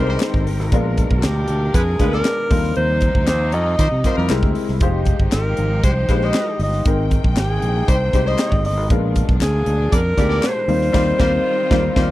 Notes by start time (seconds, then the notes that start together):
Already playing: C2 C3 D#3 G#3 C4 D#4 G4 A#4 B4 G5
0.02 C5
0.09 G3 D#4 C5
0.20 snare, clap, closed hi-hat
0.34 G#1, kick
0.46 G1, open hi-hat
0.59 G#1, snare
0.71 A#1 B2 G#3 B3 D4 F4 A#4, kick, closed hi-hat
0.97 kick, closed hi-hat
1.11 B1, kick
1.17 F#4
1.23 D2 G4, snare, clap, closed hi-hat
1.48 D2, closed hi-hat
1.74 F2 G#3 F4 G#4 B4, kick, closed hi-hat
1.99 D2 G#3 B3 D4 F4 A#4 B4, kick, snare, closed hi-hat
2.07 A#4
2.12 B3 G#4 A#4 D5, snare
2.25 snare, clap, closed hi-hat
2.50 D#2 C3 F3 G3 C4 D#4 F4 A4, kick, open hi-hat
2.57 A#4
2.64 snare
2.76 D#2 C5, closed hi-hat
3.01 kick, closed hi-hat
3.15 D2, kick
3.27 D#2 C5, snare, clap, closed hi-hat
3.52 F2 D#5, closed hi-hat
3.79 D#3 G3 F4 C5, kick, closed hi-hat
3.92 C3
4.04 G3 C4 D#4 F4 A#4 C5, kick, snare, closed hi-hat
4.17 F2 G3 E4 A#4
4.29 C2 G#3 A#3 C4 E4 G4 A#4, snare, clap, closed hi-hat
4.43 D2, kick
4.55 open hi-hat
4.68 C2, snare
4.80 F1 F3 G#3 D#4 F4 G4 C5, kick, closed hi-hat
5.05 kick, closed hi-hat
5.19 G1, kick
5.32 G#1 A#4, snare, clap, closed hi-hat
5.57 G#1, closed hi-hat
5.84 C2 G#3 G4 C5, kick, closed hi-hat
6.09 A#1 G#3 D#4 F4 G4 B4 C5, kick, snare, closed hi-hat
6.17 C5
6.22 G#3 G4 C5 D#5, snare
6.34 snare, clap, closed hi-hat
6.59 G1, open hi-hat
6.63 D#5
6.73 snare
6.85 G#1 C3 D#3 G#3 A#3 C4 D#4 A#4 G5, kick, closed hi-hat
7.11 kick, closed hi-hat
7.24 A#1, kick
7.37 G#1 G#4, snare, clap, closed hi-hat
7.62 A#1, closed hi-hat
7.88 C2 G3 D#4 C5, kick, closed hi-hat
8.13 C2 G3 G#3 C4 D#4 G4 C5, kick, snare, closed hi-hat
8.26 G3 D#4 C5 D#5, snare
8.38 snare, clap, closed hi-hat
8.52 G#1, kick
8.64 G1 D#5, open hi-hat
8.77 G#1
8.90 A#1 A#2 B2 G#3 B3 D4 F4 A#4, kick, closed hi-hat
9.16 kick, closed hi-hat
9.29 B1, kick
9.41 D2 G#4, snare, clap, closed hi-hat
9.66 D2, closed hi-hat
9.92 F2 B3 G#4 A#4 D5, kick, closed hi-hat
10.17 D2 G#3 B3 D4 F4 G4 G#4 D5, kick, snare, closed hi-hat
10.29 B3 G#4 D5, snare
10.43 C5, snare, clap, closed hi-hat
10.68 D#2 D#3 G3 C4 D#4 F4 A#4, open hi-hat
10.81 snare
10.92 D#2 G3 C4 D#4 F4 A#4 C5, kick, snare, crash
11.19 D#2 G3 C4 D#4 F4 A#4 C5, kick, snare
11.70 D#2 G3 C4 D#4 F4 A#4 C5, kick, snare
11.95 D#2 G3 C4 D#4 F4 A#4 C5, kick, snare